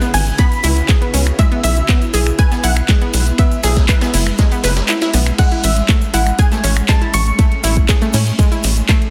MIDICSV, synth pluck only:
0, 0, Header, 1, 2, 480
1, 0, Start_track
1, 0, Key_signature, 3, "major"
1, 0, Tempo, 500000
1, 1332, Time_signature, 4, 2, 24, 8
1, 8737, End_track
2, 0, Start_track
2, 0, Title_t, "Synth pluck"
2, 0, Program_c, 0, 84
2, 0, Note_on_c, 0, 78, 103
2, 135, Note_on_c, 0, 80, 109
2, 148, Note_off_c, 0, 78, 0
2, 357, Note_off_c, 0, 80, 0
2, 374, Note_on_c, 0, 83, 99
2, 1055, Note_off_c, 0, 83, 0
2, 1336, Note_on_c, 0, 76, 106
2, 1563, Note_off_c, 0, 76, 0
2, 1574, Note_on_c, 0, 76, 98
2, 2292, Note_on_c, 0, 80, 111
2, 2315, Note_off_c, 0, 76, 0
2, 2532, Note_on_c, 0, 78, 109
2, 2539, Note_off_c, 0, 80, 0
2, 3254, Note_on_c, 0, 76, 92
2, 3274, Note_off_c, 0, 78, 0
2, 4655, Note_off_c, 0, 76, 0
2, 5174, Note_on_c, 0, 78, 96
2, 5416, Note_on_c, 0, 76, 88
2, 5420, Note_off_c, 0, 78, 0
2, 5896, Note_on_c, 0, 78, 91
2, 5909, Note_off_c, 0, 76, 0
2, 6135, Note_on_c, 0, 80, 101
2, 6141, Note_off_c, 0, 78, 0
2, 6580, Note_off_c, 0, 80, 0
2, 6614, Note_on_c, 0, 81, 106
2, 6854, Note_on_c, 0, 85, 105
2, 6860, Note_off_c, 0, 81, 0
2, 8255, Note_off_c, 0, 85, 0
2, 8737, End_track
0, 0, End_of_file